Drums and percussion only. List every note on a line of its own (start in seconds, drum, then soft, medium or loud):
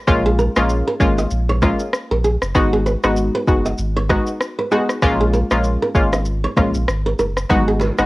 0.07 kick loud
0.07 cross-stick medium
0.07 shaker medium
0.39 shaker soft
0.56 cross-stick loud
0.56 shaker medium
0.69 shaker medium
1.00 kick medium
1.00 shaker medium
1.18 shaker medium
1.31 shaker medium
1.62 kick medium
1.62 cross-stick medium
1.62 shaker soft
1.79 shaker medium
1.93 cross-stick loud
1.93 shaker medium
2.24 shaker medium
2.42 cross-stick medium
2.42 shaker medium
2.55 kick loud
2.55 cross-stick medium
2.55 shaker medium
2.86 shaker soft
3.03 cross-stick loud
3.03 shaker medium
3.17 shaker medium
3.48 kick medium
3.48 shaker medium
3.66 shaker medium
3.78 shaker medium
4.10 kick medium
4.10 cross-stick loud
4.10 shaker medium
4.27 shaker medium
4.41 cross-stick loud
4.41 shaker medium
4.72 shaker medium
4.89 cross-stick medium
4.89 shaker medium
5.02 kick loud
5.02 cross-stick loud
5.02 shaker medium
5.34 shaker soft
5.51 cross-stick loud
5.51 shaker medium
5.64 shaker medium
5.95 kick medium
5.95 shaker medium
6.13 cross-stick medium
6.13 shaker medium
6.25 shaker medium
6.57 kick medium
6.57 cross-stick medium
6.57 shaker soft
6.74 shaker medium
6.88 cross-stick loud
6.88 shaker medium
7.19 shaker medium
7.37 cross-stick medium
7.37 shaker medium
7.50 kick loud
7.50 cross-stick medium
7.50 low conga medium
7.50 shaker medium
7.80 low bongo medium
7.80 shaker soft
7.98 cross-stick loud
7.98 shaker medium